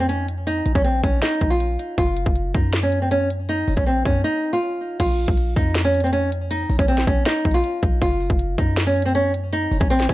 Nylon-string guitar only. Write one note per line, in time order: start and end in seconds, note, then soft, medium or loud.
0.09 0.26 C#4 medium
0.47 0.73 D#4 medium
0.75 0.84 C#4 medium
0.84 1.01 C4 medium
1.04 1.20 C#4 medium
1.22 1.49 D#4 loud
1.50 1.95 F4 medium
1.98 2.51 F4 loud
2.54 2.81 D#4 medium
2.83 3.00 C#4 medium
3.02 3.10 C4 medium
3.11 3.28 C#4 medium
3.49 3.76 D#4 loud
3.77 3.85 C#4 medium
3.87 4.03 C4 medium
4.06 4.22 C#4 medium
4.24 4.51 D#4 loud
4.53 4.97 F4 medium
5.00 5.53 F4 loud
5.57 5.83 D#4 medium
5.85 6.01 C#4 medium
6.04 6.12 C4 medium
6.13 6.30 C#4 medium
6.51 6.77 D#4 loud
6.79 6.87 C#4 medium
6.88 7.05 C4 medium
7.07 7.24 C#4 medium
7.26 7.53 D#4 loud
7.54 7.99 F4 medium
8.02 8.55 F4 loud
8.58 8.85 D#4 medium
8.87 9.03 C#4 medium
9.06 9.14 C4 medium
9.15 9.32 C#4 medium
9.53 9.79 D#4 loud
9.80 9.89 C#4 medium
9.90 10.07 C4 medium
10.09 10.14 C#4 medium